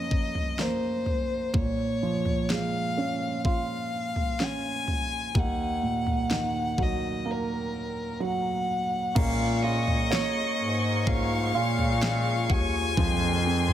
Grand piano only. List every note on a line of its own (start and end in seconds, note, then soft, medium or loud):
0.00 1.50 F#2 medium
0.00 1.57 C#3 soft
0.00 0.55 F3 soft
0.00 0.57 A#3 soft
0.00 1.50 C#4 medium
0.58 1.51 A#3 soft
1.55 5.31 A#2 medium
2.03 3.89 F3 soft
2.51 4.37 G#3 soft
2.97 4.39 C#4 soft
3.45 5.31 F4 soft
4.40 5.33 C#4 soft
5.35 9.12 D#2 medium
5.82 7.69 A#2 soft
6.30 8.17 D#3 soft
6.78 8.19 F#3 soft
7.25 9.12 A#3 soft
8.20 9.13 F#3 soft
9.15 11.05 A#3 medium
9.64 11.50 F4 soft
10.11 11.98 C#5 medium
11.07 12.93 A#3 medium
11.55 12.93 F4 medium
12.98 13.73 F3 medium
13.46 13.73 C4 medium